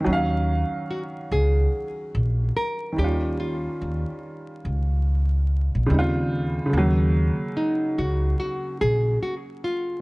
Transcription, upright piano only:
X:1
M:4/4
L:1/8
Q:"Swing 16ths" 1/4=72
K:Ebm
V:1 name="Upright piano" clef=bass
[E,G,Df]6- [E,G,Df] [E,=G,DF]- | [E,=G,DF]6 [D,G,=CEF]2 | [D,G,A,B,]8 |]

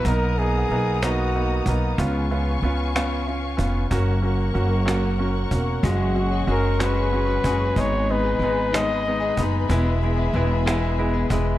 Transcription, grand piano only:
X:1
M:6/8
L:1/8
Q:3/8=62
K:F#mix
V:1 name="Grand piano"
[A,B,D] [A,B,D] [A,B,D] [A,B,D] [A,B,D] [A,B,D] | [B,C^E] [B,CE] [B,CE] [B,CE] [CE] [B,CE] | [A,CF] [A,CF] [A,CF] [A,CF] [A,CF] [A,CF] | [G,CF] [G,CF] [G,CF] [G,CF] [G,CF] [G,CF] |
[G,B,D] [G,B,D] [G,B,D] [G,B,D] [G,B,D] [G,B,D] | [G,B,E] [G,B,E] [G,B,E] [G,B,E] [G,B,E] [G,B,E] |]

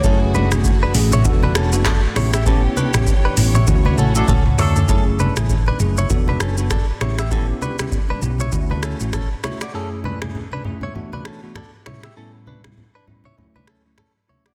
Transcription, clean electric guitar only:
X:1
M:4/4
L:1/16
Q:"Swing 16ths" 1/4=99
K:F#m
V:1 name="Clean electric guitar"
[CA] z [DB] z2 [DB] z [Ec] z [DB] [CA] z [DA] z [Ec] [=Ge] | [CA] z [DB] z2 [DB] z [Ec] z [DB] [CA] z [CA] z [Ec] [CA] | [CA] z [DB] z2 [DB] z [Ec] z [DB] [CA] z [DA] z [Ec] [=Ge] | [CA] z [DB] z2 [DB] z [Ec] z [DB] [CA] z [CA] z [Ec] [Fd] |
[CA] z [DB] z2 [DB] z [Ec] z [DB] [CA] z [DA] z [Ec] [=Ge] | [CA] z [DB] z2 [DB] z [Ec] z [DB] [CA] z [CA] z [Ec] [Fd] |]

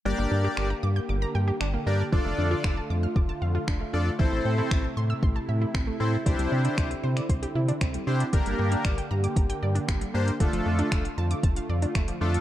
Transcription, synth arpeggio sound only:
X:1
M:4/4
L:1/16
Q:1/4=116
K:Dm
V:1 name="Synth arpeggio sound"
G, B, D G g b d' g' d' b g G D B, z2 | F, A, D F f a d' f' d' a f F D A, z2 | E, A, C E e a c' e' c' a e E C A, z2 | E, G, C D E G c d c G E D C G, z2 |
D, G, B, D d g b d' b g d D B, G, z2 | D, F, A, D z f a d' a f d D A, F, z2 |]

